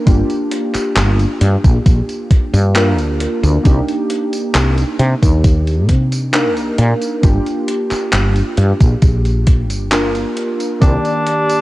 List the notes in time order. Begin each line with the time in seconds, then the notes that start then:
0.06 G1 A#3 D4 F4 G4, kick, closed hi-hat, tambourine
0.30 closed hi-hat, tambourine
0.51 closed hi-hat
0.75 muted fretless electric bass stroke, clap, closed hi-hat, tambourine
0.96 G1, clap, closed hi-hat, tambourine
1.19 closed hi-hat, tambourine
1.41 G2, closed hi-hat
1.64 A#1, kick, closed hi-hat, tambourine
1.86 A#1, kick, closed hi-hat, tambourine
2.09 closed hi-hat, tambourine
2.31 kick, closed hi-hat
2.54 G2, closed hi-hat, tambourine
2.74 A#3 D4 F4 A#4, clap, closed hi-hat, tambourine
2.98 D2, closed hi-hat, tambourine
3.20 closed hi-hat
3.43 D2, closed hi-hat, tambourine
3.63 C2 A#3 D4 D#4 G4, kick, closed hi-hat, tambourine
3.88 closed hi-hat, tambourine
4.10 closed hi-hat
4.33 closed hi-hat, tambourine
4.55 C2, clap, closed hi-hat, tambourine
4.78 closed hi-hat, tambourine
4.99 C3, closed hi-hat
5.23 D#2, kick, closed hi-hat, tambourine
5.44 kick, closed hi-hat, tambourine
5.67 closed hi-hat, tambourine
5.89 C3, kick, closed hi-hat
6.12 closed hi-hat, tambourine
6.33 A#3 D4 D#4 A#4, clap, closed hi-hat, tambourine
6.57 C2, closed hi-hat, tambourine
6.78 A#2, closed hi-hat
7.02 closed hi-hat, tambourine
7.22 G1 A#3 D4 F4 G4, kick, closed hi-hat, tambourine
7.46 closed hi-hat, tambourine
7.68 closed hi-hat
7.91 muted fretless electric bass stroke, clap, closed hi-hat, tambourine
8.13 G1, clap, closed hi-hat, tambourine
8.36 closed hi-hat, tambourine
8.57 G2, closed hi-hat
8.81 A#1, kick, closed hi-hat, tambourine
9.02 A#1, kick, closed hi-hat, tambourine
9.25 closed hi-hat, tambourine
9.47 kick, closed hi-hat
9.70 G1, closed hi-hat, tambourine
9.92 A#3 D4 F4 A#4, clap, closed hi-hat, tambourine
10.15 closed hi-hat, tambourine
10.37 closed hi-hat
10.60 closed hi-hat, tambourine
10.80 C2 D#3 A#3 D4 G4 D5, kick, closed hi-hat, tambourine
11.05 closed hi-hat, tambourine
11.27 closed hi-hat
11.50 closed hi-hat, tambourine